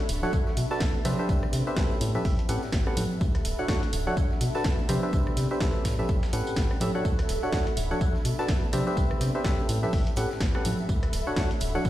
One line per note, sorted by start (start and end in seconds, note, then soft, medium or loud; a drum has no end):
0.00 0.62 D4 medium
0.00 0.62 A4 medium
0.00 0.63 E5 medium
0.09 0.26 D1 medium
0.09 open hi-hat loud
0.09 tambourine medium
0.22 0.32 D4 loud
0.22 0.32 F#4 medium
0.22 0.32 A4 medium
0.22 0.32 C#5 medium
0.22 0.32 F#5 loud
0.22 tambourine soft
0.22 high conga medium
0.33 0.42 B1 medium
0.33 kick loud
0.33 tambourine soft
0.33 tambourine medium
0.47 snare soft
0.47 tambourine soft
0.57 0.66 B2 medium
0.57 open hi-hat loud
0.57 tambourine medium
0.71 0.80 D4 medium
0.71 0.80 F#4 medium
0.71 0.80 A4 medium
0.71 0.80 B4 medium
0.71 0.80 A5 loud
0.71 snare soft
0.71 tambourine soft
0.80 0.90 B1 loud
0.80 kick loud
0.80 snare loud
0.80 tambourine soft
0.80 tambourine medium
0.95 tambourine soft
1.05 1.14 C3 medium
1.05 2.01 C4 medium
1.05 1.17 D4 medium
1.05 1.17 G4 medium
1.05 1.17 B4 medium
1.05 1.17 C5 medium
1.05 1.17 E5 medium
1.05 cross-stick medium
1.05 open hi-hat loud
1.05 tambourine medium
1.05 high conga medium
1.19 1.64 D4 medium
1.19 1.64 G4 medium
1.19 1.64 B4 medium
1.19 1.64 C5 medium
1.19 1.64 E5 medium
1.19 tambourine soft
1.29 1.46 C2 loud
1.29 kick loud
1.29 tambourine medium
1.43 cross-stick medium
1.43 tambourine soft
1.47 2.49 G4 medium
1.53 1.62 C3 medium
1.53 snare soft
1.53 open hi-hat loud
1.53 tambourine medium
1.67 1.75 D4 medium
1.67 1.75 G4 medium
1.67 1.75 B4 medium
1.67 1.75 C5 medium
1.67 1.75 E5 medium
1.67 tambourine soft
1.77 1.86 C2 medium
1.77 2.12 C#4 medium
1.77 2.12 G4 medium
1.77 2.12 A4 medium
1.77 2.12 B4 medium
1.77 2.12 E5 medium
1.77 kick loud
1.77 snare loud
1.77 tambourine medium
1.91 tambourine soft
2.01 2.18 A2 loud
2.01 4.46 A4 medium
2.01 open hi-hat loud
2.01 tambourine medium
2.14 2.24 C#4 medium
2.14 2.24 G4 medium
2.14 2.24 A4 medium
2.14 2.24 B4 medium
2.14 2.24 E5 medium
2.14 tambourine soft
2.14 high conga medium
2.25 2.34 A1 medium
2.25 kick loud
2.25 open hi-hat medium
2.25 tambourine medium
2.30 4.46 E5 medium
2.39 closed hi-hat soft
2.39 tambourine soft
2.49 2.58 A2 medium
2.49 2.62 C#4 medium
2.49 2.62 G4 medium
2.49 2.62 A4 medium
2.49 2.62 B4 medium
2.49 2.62 F#5 medium
2.49 open hi-hat loud
2.49 tambourine medium
2.56 3.61 B5 medium
2.62 snare soft
2.62 tambourine soft
2.72 2.82 A1 loud
2.72 kick loud
2.72 snare loud
2.72 tambourine medium
2.86 3.03 C#4 medium
2.86 3.03 G4 medium
2.86 3.03 A4 medium
2.86 3.03 B4 medium
2.86 3.03 F#5 medium
2.86 cross-stick medium
2.86 tambourine soft
2.97 3.06 A2 medium
2.97 open hi-hat loud
2.97 tambourine medium
2.97 high conga medium
3.11 tambourine soft
3.21 3.38 D2 loud
3.21 4.47 D4 medium
3.21 kick loud
3.21 tambourine medium
3.35 cross-stick medium
3.35 closed hi-hat soft
3.35 tambourine soft
3.45 3.54 D1 medium
3.45 open hi-hat loud
3.45 tambourine loud
3.45 tambourine medium
3.58 3.67 D4 medium
3.58 3.67 F#4 medium
3.58 3.67 A4 medium
3.58 3.67 C#5 medium
3.58 3.67 F#5 medium
3.58 tambourine soft
3.68 3.78 D2 medium
3.68 3.82 D4 medium
3.68 3.82 F#4 medium
3.68 3.82 A4 medium
3.68 3.82 C#5 medium
3.68 kick loud
3.68 snare loud
3.68 tambourine medium
3.83 closed hi-hat soft
3.83 tambourine soft
3.93 4.10 D1 medium
3.93 open hi-hat loud
3.93 tambourine medium
3.93 tambourine loud
4.07 4.16 D4 loud
4.07 4.16 F#4 medium
4.07 4.16 A4 medium
4.07 4.16 C#5 medium
4.07 4.16 F#5 loud
4.07 tambourine soft
4.07 high conga medium
4.17 4.26 B1 medium
4.17 kick loud
4.17 tambourine medium
4.30 snare soft
4.30 tambourine soft
4.41 4.50 B2 medium
4.41 open hi-hat loud
4.41 tambourine medium
4.55 4.64 D4 medium
4.55 4.64 F#4 medium
4.55 4.64 A4 medium
4.55 4.64 B4 medium
4.55 4.64 A5 loud
4.55 snare soft
4.55 tambourine soft
4.64 4.74 B1 loud
4.64 kick loud
4.64 snare loud
4.64 tambourine medium
4.79 tambourine soft
4.89 4.98 C3 medium
4.89 5.85 C4 medium
4.89 5.01 D4 medium
4.89 5.01 G4 medium
4.89 5.01 B4 medium
4.89 5.01 C5 medium
4.89 5.01 E5 medium
4.89 cross-stick medium
4.89 open hi-hat loud
4.89 tambourine medium
4.89 high conga medium
5.02 5.48 D4 medium
5.02 5.48 G4 medium
5.02 5.48 B4 medium
5.02 5.48 C5 medium
5.02 5.48 E5 medium
5.02 tambourine soft
5.13 5.30 C2 loud
5.13 kick loud
5.13 tambourine medium
5.27 cross-stick medium
5.27 tambourine soft
5.33 6.33 G4 medium
5.33 tambourine medium
5.37 5.46 C3 medium
5.37 snare soft
5.37 open hi-hat loud
5.37 tambourine medium
5.50 5.59 D4 medium
5.50 5.59 G4 medium
5.50 5.59 B4 medium
5.50 5.59 C5 medium
5.50 5.59 E5 medium
5.50 tambourine soft
5.60 5.70 C2 medium
5.60 5.96 C#4 medium
5.60 5.96 G4 medium
5.60 5.96 A4 medium
5.60 5.96 B4 medium
5.60 5.96 E5 medium
5.60 kick loud
5.60 snare loud
5.60 tambourine medium
5.75 tambourine soft
5.85 6.02 A2 medium
5.85 8.31 A4 medium
5.85 kick medium
5.85 snare loud
5.85 open hi-hat loud
5.85 tambourine medium
5.98 6.08 C#4 medium
5.98 6.08 G4 medium
5.98 6.08 A4 medium
5.98 6.08 B4 medium
5.98 6.08 E5 medium
5.98 tambourine soft
5.98 high conga medium
6.04 8.30 E5 medium
6.09 6.18 A1 medium
6.09 kick loud
6.09 tambourine soft
6.09 tambourine medium
6.23 snare medium
6.23 tambourine medium
6.23 tambourine soft
6.33 6.42 A2 medium
6.33 6.79 C#4 medium
6.33 6.79 G4 medium
6.33 6.79 A4 medium
6.33 6.79 B4 medium
6.33 6.79 F#5 medium
6.33 open hi-hat loud
6.33 tambourine medium
6.40 7.45 B5 medium
6.47 tambourine soft
6.47 tambourine medium
6.56 6.66 A1 loud
6.56 kick loud
6.56 snare loud
6.56 tambourine soft
6.56 tambourine medium
6.71 cross-stick medium
6.71 tambourine soft
6.80 6.90 A2 medium
6.80 6.92 C#4 loud
6.80 6.92 G4 medium
6.80 6.92 A4 medium
6.80 6.92 B4 medium
6.80 6.92 E5 loud
6.80 open hi-hat loud
6.80 tambourine medium
6.80 high conga medium
6.95 7.12 D4 medium
6.95 7.12 F#4 medium
6.95 7.12 A4 medium
6.95 7.12 C#5 medium
6.95 7.12 F#5 loud
6.95 tambourine soft
7.05 7.22 D2 loud
7.05 8.31 D4 medium
7.05 kick loud
7.05 tambourine medium
7.19 cross-stick medium
7.19 closed hi-hat soft
7.19 tambourine soft
7.29 7.38 D1 medium
7.29 open hi-hat loud
7.29 tambourine medium
7.43 7.51 D4 medium
7.43 7.51 F#4 medium
7.43 7.51 A4 medium
7.43 7.51 C#5 medium
7.43 7.51 F#5 medium
7.43 tambourine soft
7.53 7.62 D2 medium
7.53 7.66 D4 medium
7.53 7.66 F#4 medium
7.53 7.66 A4 medium
7.53 7.66 C#5 medium
7.53 7.66 F#5 loud
7.53 kick loud
7.53 snare loud
7.53 tambourine medium
7.67 closed hi-hat soft
7.67 tambourine soft
7.77 7.94 D1 loud
7.77 open hi-hat loud
7.77 tambourine medium
7.91 8.00 D4 medium
7.91 8.00 F#4 medium
7.91 8.00 A4 medium
7.91 8.00 C#5 medium
7.91 8.00 F#5 loud
7.91 tambourine soft
7.91 high conga medium
8.01 8.10 B1 medium
8.01 kick loud
8.01 tambourine medium
8.01 tambourine soft
8.15 snare soft
8.15 tambourine soft
8.25 8.34 B2 medium
8.25 open hi-hat loud
8.25 tambourine medium
8.39 8.48 D4 medium
8.39 8.48 F#4 medium
8.39 8.48 A4 medium
8.39 8.48 B4 medium
8.39 8.48 A5 loud
8.39 snare soft
8.39 tambourine soft
8.48 8.58 B1 loud
8.48 kick loud
8.48 snare loud
8.48 tambourine medium
8.64 tambourine soft
8.73 8.82 C3 medium
8.73 9.69 C4 medium
8.73 8.85 D4 medium
8.73 8.85 G4 medium
8.73 8.85 B4 medium
8.73 8.85 C5 medium
8.73 8.85 E5 loud
8.73 cross-stick medium
8.73 open hi-hat loud
8.73 tambourine medium
8.73 high conga medium
8.81 10.17 G4 medium
8.87 9.32 D4 medium
8.87 9.32 G4 medium
8.87 9.32 B4 medium
8.87 9.32 C5 medium
8.87 9.32 E5 loud
8.87 tambourine soft
8.97 9.14 C2 loud
8.97 kick loud
8.97 tambourine medium
9.11 cross-stick medium
9.11 tambourine soft
9.21 9.30 C3 medium
9.21 snare soft
9.21 open hi-hat loud
9.21 tambourine medium
9.35 9.43 D4 medium
9.35 9.43 G4 medium
9.35 9.43 B4 medium
9.35 9.43 C5 medium
9.35 9.43 E5 medium
9.35 tambourine soft
9.44 9.54 C2 medium
9.44 9.80 C#4 medium
9.44 9.80 G4 medium
9.44 9.80 A4 medium
9.44 9.80 B4 medium
9.44 9.80 E5 medium
9.44 kick loud
9.44 snare loud
9.44 tambourine medium
9.59 tambourine soft
9.69 9.86 A2 loud
9.69 11.90 A4 medium
9.69 open hi-hat loud
9.69 tambourine medium
9.81 9.92 C#4 medium
9.81 9.92 G4 medium
9.81 9.92 A4 medium
9.81 9.92 B4 medium
9.81 11.90 E5 medium
9.81 9.92 E5 medium
9.81 tambourine soft
9.81 high conga medium
9.93 10.02 A1 medium
9.93 kick loud
9.93 open hi-hat medium
9.93 tambourine soft
10.07 closed hi-hat soft
10.07 tambourine soft
10.16 10.26 A2 medium
10.16 10.30 C#4 medium
10.16 10.30 G4 medium
10.16 10.30 A4 medium
10.16 10.30 B4 medium
10.16 10.30 F#5 medium
10.16 open hi-hat loud
10.16 tambourine medium
10.24 11.29 B5 medium
10.31 snare soft
10.31 tambourine soft
10.41 10.50 A1 loud
10.41 kick loud
10.41 snare loud
10.41 tambourine soft
10.41 tambourine medium
10.54 10.71 C#4 medium
10.54 10.72 G4 medium
10.54 10.71 A4 medium
10.54 10.72 B4 medium
10.54 10.71 F#5 medium
10.54 cross-stick medium
10.54 tambourine soft
10.65 10.74 A2 medium
10.65 open hi-hat loud
10.65 tambourine loud
10.65 tambourine medium
10.65 high conga medium
10.78 tambourine soft
10.89 11.06 D2 loud
10.89 11.90 D4 medium
10.89 kick loud
10.89 tambourine medium
11.03 cross-stick medium
11.03 closed hi-hat soft
11.03 tambourine soft
11.13 11.22 D1 medium
11.13 open hi-hat loud
11.13 tambourine medium
11.27 11.35 D4 medium
11.27 11.35 F#4 medium
11.27 11.35 A4 medium
11.27 11.35 C#5 medium
11.27 11.35 F#5 medium
11.27 tambourine soft
11.36 11.46 D2 loud
11.36 11.50 D4 medium
11.36 11.50 F#4 medium
11.36 11.50 A4 medium
11.36 11.50 C#5 medium
11.36 11.50 F#5 loud
11.36 kick loud
11.36 snare loud
11.36 tambourine soft
11.36 tambourine medium
11.51 closed hi-hat soft
11.51 tambourine soft
11.60 11.78 D1 medium
11.60 open hi-hat medium
11.60 tambourine medium
11.75 11.84 D4 loud
11.75 11.84 F#4 medium
11.75 11.84 A4 medium
11.75 11.84 C#5 medium
11.75 11.84 F#5 loud
11.75 tambourine soft
11.75 high conga medium
11.85 11.90 B1 medium
11.85 kick loud
11.85 tambourine soft
11.85 tambourine medium